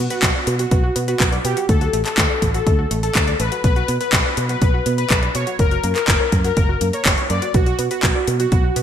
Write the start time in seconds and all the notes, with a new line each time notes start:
0.10 F#4 B4, closed hi-hat
0.23 B1 B3, kick, clap, closed hi-hat
0.35 D5
0.47 B2 B3, closed hi-hat
0.59 F#4, closed hi-hat
0.71 B1 B3, kick, closed hi-hat
0.84 F#4
0.96 B2 B3, closed hi-hat
1.08 F#4 B4, closed hi-hat
1.20 B1 B3, kick, clap, closed hi-hat
1.32 D5, closed hi-hat
1.45 B2 B3 G4, closed hi-hat
1.57 F#4, closed hi-hat
1.69 D2 A3 A4, kick, closed hi-hat
1.81 F#4, closed hi-hat
1.93 A1 A3, closed hi-hat
2.06 A4, clap, closed hi-hat
2.18 D2 A3, kick, clap, closed hi-hat
2.30 D5
2.42 A1 A3, kick, closed hi-hat
2.54 F#4 A4, closed hi-hat
2.67 D2 A3, kick, closed hi-hat
2.79 F#4
2.91 A1 A3, closed hi-hat
3.03 A4, closed hi-hat
3.15 D2 A3, kick, clap, closed hi-hat
3.28 D5, closed hi-hat
3.40 A1 A3 B4, closed hi-hat
3.52 F#4, closed hi-hat
3.64 B1 B3 B4, kick, closed hi-hat
3.76 F#4, closed hi-hat
3.88 B2 B3, closed hi-hat
4.01 B4, closed hi-hat
4.13 B1 B3, kick, clap, closed hi-hat
4.25 D5
4.37 B2 B3, closed hi-hat
4.49 F#4 B4, closed hi-hat
4.62 B1 B3, kick, closed hi-hat
4.74 F#4
4.86 B2 B3, closed hi-hat
4.98 B4, closed hi-hat
5.10 B1 B3, kick, clap, closed hi-hat
5.23 D5, closed hi-hat
5.35 B2 B3 C#5, closed hi-hat
5.47 F#4, closed hi-hat
5.59 F#1 A#3 A#4, kick, closed hi-hat
5.71 F#4, closed hi-hat
5.84 F#2 A#3, closed hi-hat
5.96 A#4, clap, closed hi-hat
6.08 F#1 A#3, kick, clap, closed hi-hat
6.20 C#5
6.32 F#2 A#3, kick, closed hi-hat
6.44 F#4 A#4, closed hi-hat
6.57 F#1 A#3, kick, closed hi-hat
6.69 F#4
6.81 F#2 A#3, closed hi-hat
6.93 A#4 C#5, closed hi-hat
7.06 F#1 A#3, kick, clap, closed hi-hat
7.18 C#5, closed hi-hat
7.30 F#2 A#3 D5, closed hi-hat
7.42 F#4, closed hi-hat
7.54 B1 B3 F#4, kick, closed hi-hat
7.66 F#4, closed hi-hat
7.79 B2 B3, closed hi-hat
7.91 F#4 B4, closed hi-hat
8.03 B1 B3, kick, clap, closed hi-hat
8.15 D5
8.27 B2 B3, closed hi-hat
8.40 F#4, closed hi-hat
8.52 B1 B3, kick, closed hi-hat
8.64 F#4
8.76 B2 B3, closed hi-hat